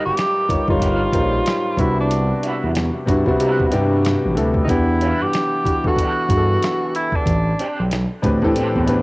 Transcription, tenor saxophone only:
0.05 G4
0.70 F4
1.79 E4
2.00 D4
4.64 D#4
4.70 E4
5.22 G4
5.87 F#4
6.95 E4
7.16 D4

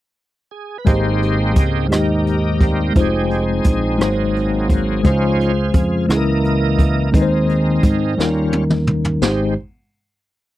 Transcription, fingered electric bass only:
0.87 G#1
1.56 C#2
1.92 D#2
2.96 F1
3.65 A#1
4.01 G#1
5.05 C#2
5.74 F2
6.09 C#2
7.14 D#2
7.84 G#2
8.18 D#2
9.22 G#1

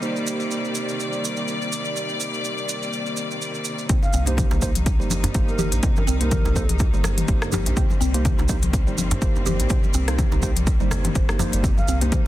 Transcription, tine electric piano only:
0.02 A#3 D#4 G4 C5
3.90 A#3 D#4 G4 C5
4.27 A#3 D#4 G4 C5
4.62 A#3 D#4 G4 C5
5.00 A#3 D#4 G4 C5
5.35 A#3 D#4 G4 C5
5.83 A#3 D#4 G4 C5
6.21 A#3 D#4 G4 C5
6.56 A#3 D#4 G4 C5
6.94 A#3 D#4 G4 C5
7.28 A#3 D#4 G4 C5
7.77 A#3 D#4 G4 C5
8.14 A#3 D#4 G4 C5
8.49 A#3 D#4 G4 C5
8.87 A#3 D#4 G4 C5
9.22 A#3 D#4 G4 C5
9.70 A#3 D#4 G4 C5
10.08 A#3 D#4 G4 C5
10.43 A#3 D#4 G4 C5
10.81 A#3 D#4 G4 C5
11.29 A#3 D#4 G4 C5
11.40 A#3 D#4 G4 C5
11.64 A#3 D#4 G4 C5
12.01 A#3 D#4 G4 C5

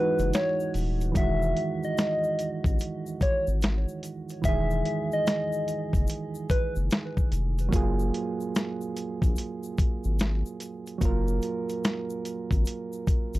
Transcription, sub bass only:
0.19 F#1
0.74 D#1
1.15 E1
2.65 A1
3.47 G#1
4.44 E1
5.93 F#1
6.76 F#1
7.32 F1
7.73 F#1
9.22 A#1
10.05 G#1
11.02 F#1
12.51 G#1
13.34 G#1

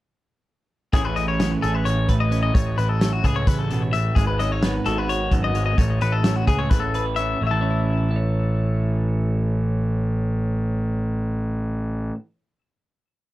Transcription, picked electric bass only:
0.93 A1
1.64 A1
2.09 A1
2.55 A1
2.78 A1
3.25 C#2
3.47 A1
4.16 G#1
4.86 G#1
5.32 G#1
5.78 A1
6.02 A1
6.47 C#2
6.72 A1
7.42 A1

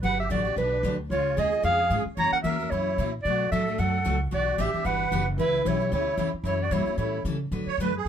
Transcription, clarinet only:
0.05 F#5
0.20 E5
0.31 D5
0.58 B4
1.12 C#5
1.39 D#5
1.65 F5
2.19 A#5
2.33 F#5
2.43 E5
2.70 C#5
3.23 D5
3.52 E5
3.79 F#5
4.34 D5
4.61 E5
4.86 F#5
5.39 B4
5.68 C#5
5.94 C#5
6.47 C#5
6.63 D5
6.72 C#5
6.98 C#5

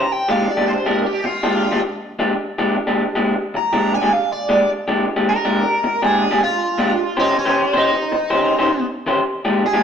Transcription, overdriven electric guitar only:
Already playing: A#5
0.12 G5
0.31 F5
0.51 D5
0.68 C5
0.86 A#4
1.06 G4
1.25 F4
3.57 A#5
3.94 G#5
4.13 F5
4.33 D5
5.29 A#4
6.05 G#4
6.44 F4
7.20 D#4
7.38 C#4
7.77 D#4
9.66 G#4

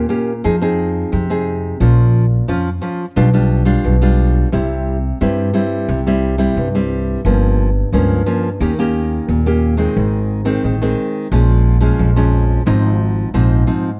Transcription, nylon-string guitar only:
Already playing: A#2
0.09 A#3 C#4 G4
0.44 F3 C4 D#4 G#4
0.61 C4 D#4 G#4
1.12 C3
1.30 C4 D#4 G#4
1.80 A#2 F3 C#4 F4
2.48 F3 C#4 F4
2.82 F3 C#4 F4
3.16 B2 G3 D4 F4
3.33 G3 D4 F4
3.65 G3 D4 F4
3.84 B2
4.02 G3 D4 F4
4.52 C3 G3 C4 E4
5.21 G2 G3 C4 E4
5.54 G3 C4 E4
5.89 C3
6.07 G3 C4 E4
6.38 G3 C4 E4
6.58 G2
6.75 G3 C4 E4
7.26 G2 F3 A#3 C#4
7.93 G2 F3 A#3 C#4
8.26 F3 A#3 C#4
8.61 D#3 A#3 C#4 G4
8.79 A#3 C#4 G4
9.29 A#2
9.46 A#3 C#4 G4
9.77 D#3 G#3 C4
9.96 G#2
10.45 D#3 G#3 C4
10.64 D#3
10.82 D#3 G#3 C4
11.32 A#2 F3 G#3 C#4
11.80 F3 G#3 C#4
11.99 F2
12.16 F3 G#3 C#4
12.66 G#2 F3 C4 D#4
13.34 G#2 F3 C4 D#4
13.67 F3 C4 D#4

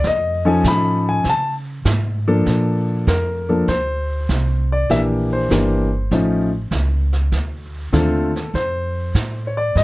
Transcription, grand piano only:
0.07 D#5
0.45 F3 C#4 D#4 A4 G#5
0.68 B5
1.09 G#5
1.30 A5
2.28 F3 A#3 D4 A4
3.08 A#4
3.49 F3 A#3 D4 A4
3.69 C5
4.72 D5
4.90 E3 A#3 D4 G4 E5
5.33 C5
5.51 E3 A#3 D4 G4
6.11 F3 A3 C#4 D#4
7.92 D3 A3 C4 F4 A4
8.55 C5
9.47 C#5
9.57 D5
9.77 D#5

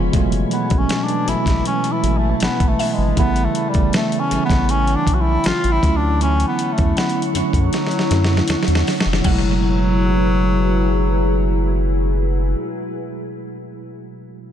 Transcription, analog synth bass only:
0.13 F#1
0.71 G#1
1.27 A1
1.46 A1
2.03 A1
2.41 G#1
2.60 G#1
2.98 G#1
3.17 A1
3.75 G1
4.31 A1
4.50 A1
5.07 B1
5.45 A1
5.64 A1
5.83 D2
6.79 E2
7.35 F#2
7.53 F#2
8.11 F#2
8.49 E2
8.68 E2
9.06 F1
9.25 F#1

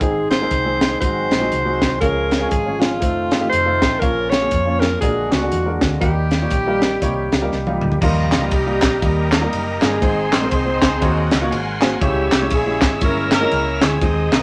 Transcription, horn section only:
8.02 F3 A#3 F4
8.53 G3 A#3 D#4 G4
9.03 A#3 D#4 G4 A#4
9.33 A#3 D#4 G4 A#4
9.83 G#3 C4 D#4 G#4
10.33 C4 C5
10.52 C4 D#4 G#4 C5
12.01 G3 C#4 E4 G4
12.53 G#3 C#4 E4 G#4
13.03 A#3 C#4 E4 A#4
13.32 A#3 C#4 E4 A#4
13.82 G#3 C4 D#4 G#4
14.33 A#3 A#4

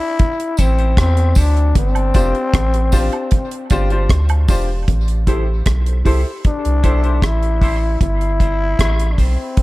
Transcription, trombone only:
Already playing: E4
0.60 C4
1.01 C4
1.39 D4
1.78 C4
6.47 D4
7.25 E4
8.03 E4
9.13 D4
9.20 C4

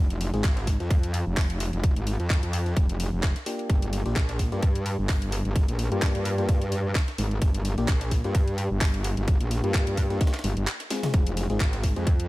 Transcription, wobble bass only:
Already playing: F1
0.34 G#1
0.80 F2
1.27 F1
1.73 F1
1.96 G#1
2.20 F2
2.43 F2
2.77 F1
3.13 F1
3.70 G1
4.06 A#1
4.52 G2
4.99 G1
5.45 G1
5.68 A#1
5.92 G2
6.15 G2
6.49 G2
7.18 G#1
7.42 G1
7.78 A#1
8.24 G2
8.71 G1
9.17 G1
9.41 A#1
9.64 G2
9.87 G2
10.44 G1
10.57 G1
11.14 F1
11.50 G#1
11.96 F2

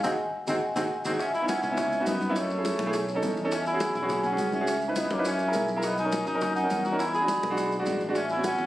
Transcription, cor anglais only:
0.04 C4
0.49 C4
0.76 C4
1.05 C4
1.20 C#4
1.34 E4
1.48 C#4
1.63 C#4
2.07 B3
2.37 A3
3.52 C#4
3.67 E4
3.95 E4
4.25 C#4
4.55 C#4
4.98 B3
5.13 A#3
5.26 C#4
5.84 B3
5.99 D#4
6.27 D#4
6.56 D#4
6.85 F#4
6.99 E4
7.14 G#4
8.16 C#4
8.31 E4
8.46 C#4

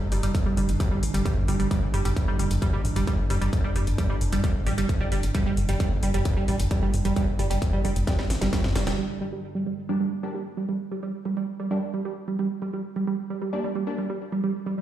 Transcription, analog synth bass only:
0.01 G1
0.12 G1
0.23 G1
0.46 G1
0.57 G1
0.69 G1
0.91 G1
1.03 A1
1.14 G1
1.37 G2
1.48 G1
1.60 G1
1.82 G1
1.94 G1
2.05 G1
2.28 G1
2.39 G1
2.51 G1
2.73 G1
2.85 A1
2.96 G1
3.19 G1
3.30 G1
3.41 G1
3.64 G1
3.75 G1
3.87 G1
4.10 G1
4.21 G1
4.33 G1
4.55 G1
4.67 A1
4.78 G1
5.01 G1
5.12 G1
5.23 G1
5.46 G1
5.57 G1
5.69 G1
5.91 G1
6.03 G1
6.14 G1
6.37 G1
6.48 A1
6.60 G1
6.82 G1
6.94 G1
7.05 G1
7.28 G1
7.39 G1
7.50 G1
7.73 G1
7.84 G1
7.96 G1
8.19 G1
8.30 A1
8.42 G1
8.64 G2
8.76 G1
8.87 F1

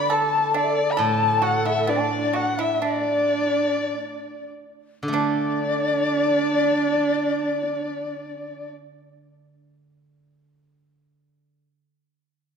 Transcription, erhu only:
Already playing: B5
0.13 A5
0.57 D5
0.92 B5
1.01 A5
1.43 F#5
1.66 E5
1.89 D5
2.36 F#5
2.60 E5
2.84 D5
5.13 D5

